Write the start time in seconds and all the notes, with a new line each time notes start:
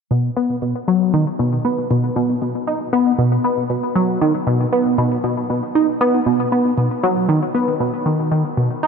0.11 B2
0.37 B3
0.62 B2
0.88 F#3
1.14 D#3
1.39 B2
1.65 B3
1.91 B2
2.16 B2
2.42 B2
2.67 D#4
2.93 B3
3.18 B2
3.44 B3
3.70 B2
3.95 F#3
4.21 D#3
4.47 B2
4.73 B3
4.98 B2
5.24 B2
5.50 B2
5.75 D#4
6.01 B3
6.26 B2
6.52 B3
6.78 B2
7.03 F#3
7.29 D#3
7.55 B3
7.80 B2
8.06 D#3
8.32 D#3
8.57 B2
8.83 D#4